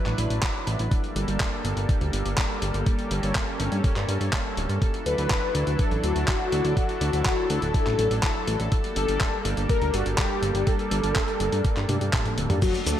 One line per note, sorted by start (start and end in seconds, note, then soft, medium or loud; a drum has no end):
0.00 0.88 F#3 medium
0.00 2.83 D4 medium
0.00 0.88 E4 medium
0.00 0.90 B4 medium
0.06 0.16 A1 medium
0.06 clap soft
0.06 closed hi-hat soft
0.18 0.28 A1 medium
0.18 closed hi-hat medium
0.30 0.40 A1 medium
0.30 closed hi-hat medium
0.43 kick loud
0.43 clap loud
0.43 closed hi-hat medium
0.67 0.77 A1 medium
0.67 closed hi-hat medium
0.79 0.89 A1 medium
0.79 closed hi-hat medium
0.91 4.78 G3 medium
0.91 4.78 A#3 medium
0.91 12.58 A4 medium
0.91 kick loud
0.91 closed hi-hat medium
1.04 closed hi-hat soft
1.16 1.25 G1 medium
1.16 closed hi-hat medium
1.28 1.38 G1 medium
1.28 closed hi-hat medium
1.40 kick loud
1.40 clap loud
1.40 closed hi-hat medium
1.65 1.74 G1 loud
1.65 closed hi-hat medium
1.77 1.86 G1 medium
1.77 closed hi-hat soft
1.89 kick loud
1.89 closed hi-hat medium
2.01 2.11 D2 medium
2.01 closed hi-hat soft
2.13 2.23 G1 loud
2.13 closed hi-hat medium
2.26 2.35 G1 medium
2.26 closed hi-hat soft
2.38 kick loud
2.38 clap loud
2.38 closed hi-hat medium
2.62 2.72 G1 medium
2.62 closed hi-hat medium
2.74 2.84 G1 medium
2.74 closed hi-hat soft
2.86 4.80 C#4 medium
2.86 kick loud
2.86 closed hi-hat medium
2.99 closed hi-hat soft
3.11 3.21 G1 medium
3.11 closed hi-hat medium
3.23 3.33 G1 medium
3.23 closed hi-hat medium
3.35 kick loud
3.35 clap loud
3.35 closed hi-hat medium
3.60 3.69 G1 loud
3.60 closed hi-hat medium
3.72 3.82 G2 medium
3.72 closed hi-hat soft
3.84 kick loud
3.84 closed hi-hat medium
3.96 4.06 G2 medium
3.96 clap soft
3.96 closed hi-hat soft
4.08 4.18 G2 loud
4.08 closed hi-hat medium
4.21 4.30 G2 medium
4.21 closed hi-hat soft
4.33 kick loud
4.33 clap loud
4.33 closed hi-hat medium
4.57 4.67 D1 medium
4.57 closed hi-hat medium
4.69 4.79 G2 medium
4.69 closed hi-hat soft
4.82 8.68 F#3 medium
4.82 8.68 D4 medium
4.82 8.68 E4 medium
4.82 kick loud
4.82 closed hi-hat medium
4.94 closed hi-hat soft
5.06 5.16 D2 medium
5.06 5.81 B4 loud
5.06 closed hi-hat medium
5.18 5.28 D2 medium
5.18 closed hi-hat medium
5.30 kick loud
5.30 clap loud
5.30 closed hi-hat medium
5.55 5.64 D2 medium
5.55 closed hi-hat medium
5.67 5.77 D2 medium
5.67 closed hi-hat medium
5.79 5.90 A4 loud
5.79 kick loud
5.79 closed hi-hat medium
5.91 6.01 A1 medium
5.91 closed hi-hat soft
6.04 6.13 D2 loud
6.04 6.76 F#4 loud
6.04 closed hi-hat medium
6.16 6.25 D2 medium
6.16 closed hi-hat soft
6.28 kick loud
6.28 clap loud
6.28 closed hi-hat medium
6.52 6.62 D2 loud
6.52 closed hi-hat medium
6.65 6.74 D2 medium
6.65 closed hi-hat soft
6.77 7.52 F#4 loud
6.77 kick loud
6.77 closed hi-hat medium
6.89 closed hi-hat soft
7.01 7.11 D2 medium
7.01 closed hi-hat medium
7.13 7.23 D2 medium
7.13 closed hi-hat medium
7.25 kick loud
7.25 clap loud
7.25 closed hi-hat medium
7.50 7.60 D2 medium
7.50 7.73 A4 medium
7.50 closed hi-hat medium
7.62 7.72 D1 medium
7.62 closed hi-hat soft
7.74 8.22 A4 loud
7.74 kick loud
7.74 closed hi-hat medium
7.87 7.96 A1 medium
7.87 clap soft
7.87 closed hi-hat soft
7.99 8.08 A1 loud
7.99 closed hi-hat medium
8.11 8.21 A1 medium
8.11 closed hi-hat medium
8.23 8.57 A4 medium
8.23 kick loud
8.23 clap loud
8.23 closed hi-hat medium
8.47 8.57 A1 medium
8.47 closed hi-hat medium
8.60 8.69 A1 medium
8.60 closed hi-hat medium
8.72 12.58 G3 medium
8.72 12.58 A#3 medium
8.72 12.58 D4 medium
8.72 kick loud
8.72 closed hi-hat medium
8.84 closed hi-hat soft
8.96 9.06 G1 loud
8.96 9.42 A4 loud
8.96 closed hi-hat medium
9.08 9.18 G1 medium
9.08 closed hi-hat medium
9.21 kick loud
9.21 clap loud
9.21 closed hi-hat medium
9.45 9.55 G1 medium
9.45 closed hi-hat medium
9.57 9.67 G1 medium
9.57 closed hi-hat medium
9.69 9.95 A#4 loud
9.69 kick loud
9.69 closed hi-hat medium
9.82 9.91 D2 medium
9.82 closed hi-hat soft
9.94 10.03 G1 loud
9.94 10.05 F#4 medium
9.94 closed hi-hat medium
10.06 10.16 G1 medium
10.06 closed hi-hat medium
10.18 10.68 G4 loud
10.18 kick loud
10.18 clap loud
10.18 closed hi-hat medium
10.42 10.52 G1 loud
10.42 closed hi-hat medium
10.55 10.64 G1 medium
10.55 closed hi-hat medium
10.67 12.09 A4 loud
10.67 kick loud
10.67 closed hi-hat medium
10.79 closed hi-hat soft
10.91 11.01 G1 medium
10.91 closed hi-hat medium
11.04 11.13 G1 medium
11.04 closed hi-hat medium
11.16 kick loud
11.16 clap loud
11.16 closed hi-hat medium
11.28 closed hi-hat soft
11.40 11.50 G1 medium
11.40 closed hi-hat medium
11.52 11.62 G2 medium
11.52 closed hi-hat medium
11.65 kick loud
11.65 closed hi-hat medium
11.77 11.86 G2 medium
11.77 clap soft
11.77 closed hi-hat soft
11.89 11.99 G2 loud
11.89 closed hi-hat medium
11.89 high tom medium
12.01 12.11 G2 medium
12.01 closed hi-hat medium
12.13 kick loud
12.13 clap loud
12.13 closed hi-hat medium
12.13 mid tom medium
12.26 closed hi-hat soft
12.26 mid tom medium
12.38 12.47 D1 medium
12.38 closed hi-hat medium
12.50 12.60 G2 medium
12.50 closed hi-hat medium
12.50 mid tom medium
12.62 13.00 F#3 medium
12.62 12.74 F#3 medium
12.62 13.00 A3 medium
12.62 13.00 D4 medium
12.62 12.73 F#4 loud
12.62 13.00 A4 medium
12.62 kick loud
12.62 closed hi-hat medium
12.62 crash loud
12.62 cabasa soft
12.74 closed hi-hat soft
12.74 cabasa soft
12.86 12.96 D2 medium
12.86 13.00 A3 medium
12.86 13.00 A4 loud
12.86 closed hi-hat medium
12.86 cabasa medium